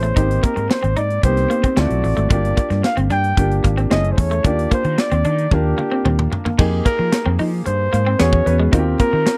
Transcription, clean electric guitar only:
0.03 0.14 A3 medium
0.16 0.27 D#4 medium
0.43 0.54 A#3 medium
0.56 muted clean electric guitar stroke soft
0.70 muted clean electric guitar stroke soft
0.83 0.94 C4 medium
0.97 1.08 D#4 medium
1.23 muted clean electric guitar stroke soft
1.50 1.61 A#3 medium
1.63 1.75 C4 medium
1.77 1.88 C4 medium
2.04 muted clean electric guitar stroke soft
2.17 2.28 A3 medium
2.30 2.42 D4 medium
2.57 2.68 A#3 medium
2.70 muted clean electric guitar stroke soft
2.83 muted clean electric guitar stroke soft
2.97 3.08 C4 medium
3.10 3.22 D4 medium
3.37 muted clean electric guitar stroke soft
3.64 3.75 A#3 medium
3.77 3.89 C4 medium
3.91 4.02 C4 medium
4.18 muted clean electric guitar stroke soft
4.31 4.42 A3 medium
4.44 4.56 D4 medium
4.71 4.82 A#3 medium
4.85 muted clean electric guitar stroke soft
4.98 muted clean electric guitar stroke soft
5.12 5.23 C4 medium
5.25 5.36 D4 medium
5.51 muted clean electric guitar stroke soft
5.78 5.89 A#3 medium
5.92 6.03 C4 medium
6.05 6.16 C4 medium
6.32 muted clean electric guitar stroke soft
6.45 6.56 A#3 medium
6.59 6.70 D#4 medium
6.85 6.96 A#3 medium
6.99 muted clean electric guitar stroke soft
7.12 muted clean electric guitar stroke soft
7.26 7.37 C4 medium
7.39 7.50 D#4 medium
7.66 muted clean electric guitar stroke soft
7.93 8.04 A#3 medium
8.07 8.17 C4 medium
8.20 8.30 B3 medium
8.46 muted clean electric guitar stroke soft
8.60 8.70 G#3 medium
8.73 8.84 D#4 medium
9.00 9.11 A#3 medium
9.13 muted clean electric guitar stroke soft
9.26 muted clean electric guitar stroke soft

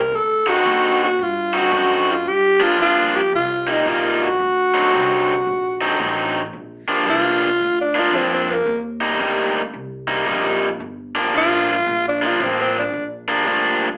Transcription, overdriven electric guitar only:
0.46 0.64 D3 medium
0.46 0.64 C4 medium
0.46 0.64 D#4 medium
0.46 0.65 F#4 medium
0.65 1.05 D3 medium
0.65 1.06 C4 medium
0.65 1.06 D#4 medium
0.65 1.06 F#4 medium
1.53 1.71 D3 medium
1.53 1.71 C4 medium
1.53 1.72 D#4 medium
1.53 1.72 F#4 medium
1.72 2.13 D3 medium
1.72 2.13 C4 medium
1.72 2.13 D#4 medium
1.72 2.13 F#4 medium
2.60 2.77 G2 medium
2.60 2.78 F3 medium
2.60 2.78 A#3 medium
2.60 2.79 D4 medium
2.78 3.19 G2 medium
2.78 3.20 F3 medium
2.78 3.20 A#3 medium
2.78 3.20 D4 medium
3.67 3.84 C3 medium
3.67 3.85 G3 medium
3.67 3.85 A#3 medium
3.67 3.86 D#4 medium
3.85 4.26 C3 medium
3.85 4.27 G3 medium
3.85 4.27 A#3 medium
3.85 4.27 D#4 medium
4.74 4.91 D3 medium
4.74 4.92 F#3 medium
4.74 4.92 C4 medium
4.74 4.92 D#4 medium
4.92 5.33 D3 medium
4.92 5.33 F#3 medium
4.92 5.33 C4 medium
4.92 5.34 D#4 medium
5.81 5.98 D3 medium
5.81 5.98 F#3 medium
5.81 5.99 C4 medium
5.81 5.99 D#4 medium
5.99 6.40 D3 medium
5.99 6.40 F#3 medium
5.99 6.40 C4 medium
5.99 6.40 D#4 medium
6.88 7.05 G2 medium
6.88 7.05 F3 medium
6.88 7.06 A#3 medium
6.88 7.06 D4 medium
7.06 7.47 G2 medium
7.06 7.47 F3 medium
7.06 7.47 A#3 medium
7.06 7.47 D4 medium
7.95 8.12 G2 medium
7.95 8.12 F3 medium
7.95 8.13 A#3 medium
7.95 8.13 D4 medium
8.13 8.53 G2 medium
8.13 8.54 F3 medium
8.13 8.54 A#3 medium
8.13 8.54 D4 medium
9.01 9.18 C3 medium
9.01 9.18 G3 medium
9.01 9.19 A#3 medium
9.01 9.19 D#4 medium
9.19 9.60 C3 medium
9.19 9.60 G3 medium
9.19 9.61 A#3 medium
9.19 9.61 D#4 medium
10.07 10.25 C3 medium
10.07 10.26 G3 medium
10.07 10.26 A#3 medium
10.07 10.26 D#4 medium
10.26 10.67 C3 medium
10.26 10.67 G3 medium
10.26 10.68 A#3 medium
10.26 10.68 D#4 medium
11.15 11.33 G2 medium
11.15 11.33 F3 medium
11.15 11.33 A#3 medium
11.15 11.34 D4 medium
11.34 11.74 G2 medium
11.34 11.74 F3 medium
11.34 11.74 A#3 medium
11.34 11.75 D4 medium
12.22 12.39 G2 medium
12.22 12.39 F3 medium
12.22 12.40 A#3 medium
12.22 12.40 D4 medium
12.40 12.81 G2 medium
12.40 12.81 F3 medium
12.40 12.81 A#3 medium
12.40 12.81 D4 medium
13.28 13.45 G2 medium
13.28 13.46 F3 medium
13.28 13.46 A#3 medium
13.28 13.47 D4 medium
13.47 13.87 G2 medium
13.47 13.87 F3 medium
13.47 13.87 A#3 medium
13.47 13.88 D4 medium

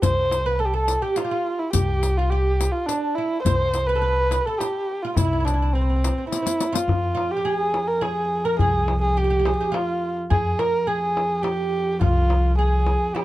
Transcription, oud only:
0.02 0.45 C5 medium
0.46 0.58 B4 medium
0.59 0.72 A4 medium
0.73 1.02 A4 medium
1.02 1.17 G4 medium
1.18 1.24 F4 medium
1.25 1.31 G4 medium
1.31 1.71 F4 medium
1.73 2.14 G4 medium
2.19 2.33 F4 medium
2.32 2.90 G4 medium
2.89 3.18 D4 medium
3.18 3.47 E4 medium
3.47 3.89 C5 medium
3.89 3.95 B4 medium
3.95 4.01 A4 medium
4.02 4.30 B4 medium
4.31 4.46 B4 medium
4.47 4.61 A4 medium
4.61 5.04 G4 medium
5.05 5.17 F4 medium
5.18 5.23 E4 medium
5.25 5.32 E4 soft
5.33 5.39 E4 medium
5.40 5.43 E4 medium
5.45 5.53 E4 medium
5.54 5.61 E4 medium
5.62 5.70 E4 medium
5.75 5.80 C4 medium
5.81 5.88 C4 soft
5.90 5.95 C4 soft
5.96 6.03 C4 soft
6.04 6.10 C4 soft
6.11 6.17 C4 soft
6.18 6.26 C4 soft
6.27 6.32 C4 soft
6.34 6.41 C4 soft
6.42 6.49 C4 soft
6.72 7.13 F4 medium
7.15 7.36 F4 medium
7.37 7.44 G4 medium
7.45 8.00 G#4 medium
8.01 8.42 G#4 medium
8.45 8.60 A#4 medium
8.60 9.17 G#4 medium
9.17 9.23 G4 medium
9.24 9.29 G4 medium
9.30 9.38 G4 medium
9.39 9.45 G4 medium
9.46 9.52 G4 medium
9.54 9.59 G4 medium
9.61 9.69 G4 medium
9.72 10.12 F4 medium
10.30 10.59 G#4 medium
10.59 10.87 A#4 medium
10.87 11.43 G#4 medium
11.43 12.00 G4 medium
12.01 12.58 F4 medium
12.59 13.18 G#4 medium
13.15 13.25 E4 medium

